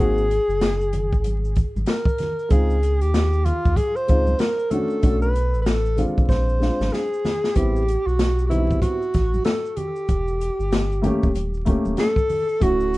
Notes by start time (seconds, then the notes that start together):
Already playing: A#3 C4 G#4
0.00 G#1 D#4 F#4
0.17 maracas
0.31 closed hi-hat, maracas
0.48 F#1, maracas
0.61 snare, closed hi-hat, maracas
0.81 maracas
0.93 closed hi-hat, low conga, maracas
1.13 G#1, kick, maracas
1.24 closed hi-hat, high conga, maracas
1.45 maracas
1.55 kick, closed hi-hat, maracas
1.75 G#1, high conga, maracas
1.86 A#4, snare, closed hi-hat, maracas
2.05 kick, maracas
2.18 snare, closed hi-hat, low conga, maracas
2.39 maracas
2.49 C#2 G#3 C4 D#4 F4 G#4, kick, closed hi-hat, maracas
2.70 maracas
2.83 closed hi-hat, maracas
3.01 D#2 G4, closed hi-hat, maracas
3.14 snare, closed hi-hat, maracas
3.33 maracas
3.45 F4, closed hi-hat, low conga, maracas
3.65 D#2, kick, maracas
3.76 G#4, kick, closed hi-hat, high conga, maracas
3.96 C5, maracas
4.07 C#2 G#3 C4 D#4 F4, kick, closed hi-hat, maracas
4.27 high conga, maracas
4.39 A#4, snare, closed hi-hat, maracas
4.59 maracas
4.70 A3 C#4 D4 F#4 A4, closed hi-hat, low conga, maracas
4.90 maracas
5.02 B1 A3 C#4 D4 F#4, kick, closed hi-hat, maracas
5.22 B4, maracas
5.35 closed hi-hat, maracas
5.54 A1, maracas
5.62 B4
5.66 A4, snare, closed hi-hat, maracas
5.86 maracas
5.96 G#3 C4 D4 F4, closed hi-hat, low conga, maracas
6.18 B1, kick, maracas
6.29 A#1 C5, kick, snare, high conga, maracas
6.49 maracas
6.59 G#3 C4 D4 F4, snare, maracas
6.80 G#1, snare, high conga, maracas
6.93 G#4, snare, maracas
7.13 maracas
7.25 snare, low conga, maracas
7.44 snare, maracas
7.54 A1 G3 B3 C4 E4 G4, kick, closed hi-hat, maracas
7.76 maracas
7.88 closed hi-hat, maracas
8.06 B1 F#4, maracas
8.19 snare, closed hi-hat, maracas
8.39 maracas
8.46 G3 B3 E4 F#4
8.51 C4 D#4, closed hi-hat, low conga, maracas
8.58 E4
8.71 kick, maracas
8.82 F#4, kick, closed hi-hat, high conga, maracas
9.02 maracas
9.14 A1, kick, snare, closed hi-hat, maracas
9.34 high conga, maracas
9.45 A4, snare, closed hi-hat, maracas
9.66 maracas
9.77 G4, closed hi-hat, low conga, maracas
9.96 maracas
10.09 E1, kick, closed hi-hat, maracas
10.28 maracas
10.41 closed hi-hat, maracas
10.59 G1, maracas
10.72 snare, closed hi-hat, maracas
10.92 maracas
11.02 A3 A#3 C#4 G4, closed hi-hat, low conga, maracas
11.23 E1, kick, maracas
11.35 D#1, closed hi-hat, high conga, maracas
11.54 maracas
11.65 A3 A#3 C#4 G4, kick, closed hi-hat, maracas
11.85 D#1, high conga, maracas
11.97 A4, snare, closed hi-hat, maracas
12.16 kick, maracas
12.29 open hi-hat, low conga, maracas
12.49 maracas
12.60 D1 A3 C#4 E4 F#4, kick, closed hi-hat, maracas
12.80 maracas
12.93 closed hi-hat, maracas